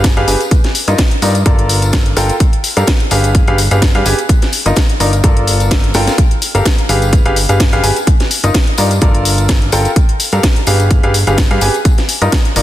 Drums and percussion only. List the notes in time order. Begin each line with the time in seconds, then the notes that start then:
0.04 kick, snare, closed hi-hat, tambourine
0.17 closed hi-hat
0.28 open hi-hat, tambourine
0.41 closed hi-hat, tambourine
0.51 kick, closed hi-hat, tambourine
0.64 snare, closed hi-hat
0.75 open hi-hat, tambourine
0.88 closed hi-hat, tambourine
0.98 kick, snare, closed hi-hat, tambourine
1.11 closed hi-hat
1.22 open hi-hat, tambourine
1.35 closed hi-hat, tambourine
1.46 kick, closed hi-hat
1.59 closed hi-hat
1.69 open hi-hat, tambourine
1.82 closed hi-hat, tambourine
1.93 kick, snare, closed hi-hat
2.06 closed hi-hat
2.16 open hi-hat, tambourine
2.29 closed hi-hat, tambourine
2.40 kick, closed hi-hat, tambourine
2.53 closed hi-hat
2.64 open hi-hat, tambourine
2.77 closed hi-hat, tambourine
2.87 kick, snare, closed hi-hat, tambourine
3.00 closed hi-hat
3.11 open hi-hat, tambourine
3.24 closed hi-hat, tambourine
3.35 kick, closed hi-hat, tambourine
3.48 closed hi-hat
3.58 open hi-hat, tambourine
3.71 closed hi-hat, tambourine
3.82 kick, snare, closed hi-hat
3.95 closed hi-hat
4.06 open hi-hat, tambourine
4.19 closed hi-hat, tambourine
4.29 kick, closed hi-hat, tambourine
4.42 snare, closed hi-hat
4.53 open hi-hat, tambourine
4.66 closed hi-hat, tambourine
4.76 kick, snare, closed hi-hat, tambourine
4.89 closed hi-hat
5.00 open hi-hat, tambourine
5.13 closed hi-hat, tambourine
5.24 kick, closed hi-hat, tambourine
5.37 closed hi-hat
5.47 open hi-hat, tambourine
5.60 closed hi-hat, tambourine
5.71 kick, snare, closed hi-hat
5.84 closed hi-hat
5.94 snare, open hi-hat, tambourine
6.07 snare, closed hi-hat, tambourine
6.18 kick, closed hi-hat, tambourine
6.31 closed hi-hat
6.42 open hi-hat, tambourine
6.55 closed hi-hat, tambourine
6.65 kick, snare, closed hi-hat
6.78 closed hi-hat
6.89 open hi-hat, tambourine
7.02 closed hi-hat, tambourine
7.13 kick, closed hi-hat, tambourine
7.26 closed hi-hat
7.36 open hi-hat, tambourine
7.49 closed hi-hat, tambourine
7.60 kick, snare, closed hi-hat
7.73 closed hi-hat
7.84 open hi-hat, tambourine
7.96 closed hi-hat, tambourine
8.07 kick, closed hi-hat
8.20 snare, closed hi-hat
8.31 open hi-hat, tambourine
8.44 closed hi-hat, tambourine
8.54 kick, snare, closed hi-hat
8.67 closed hi-hat
8.78 open hi-hat, tambourine
8.90 closed hi-hat, tambourine
9.01 kick, closed hi-hat, tambourine
9.15 closed hi-hat
9.25 open hi-hat, tambourine
9.38 closed hi-hat, tambourine
9.48 kick, snare, closed hi-hat, tambourine
9.62 closed hi-hat
9.72 open hi-hat, tambourine
9.85 closed hi-hat, tambourine
9.96 kick, closed hi-hat, tambourine
10.09 closed hi-hat
10.20 open hi-hat, tambourine
10.32 closed hi-hat, tambourine
10.43 kick, snare, closed hi-hat, tambourine
10.56 closed hi-hat
10.67 open hi-hat, tambourine
10.80 closed hi-hat, tambourine
10.91 kick, closed hi-hat
11.03 closed hi-hat
11.14 open hi-hat, tambourine
11.27 closed hi-hat, tambourine
11.37 kick, snare, closed hi-hat, tambourine
11.51 closed hi-hat
11.61 open hi-hat, tambourine
11.74 closed hi-hat, tambourine
11.85 kick, closed hi-hat, tambourine
11.98 snare, closed hi-hat
12.09 open hi-hat, tambourine
12.22 closed hi-hat, tambourine
12.32 kick, snare, closed hi-hat
12.45 closed hi-hat
12.56 open hi-hat, tambourine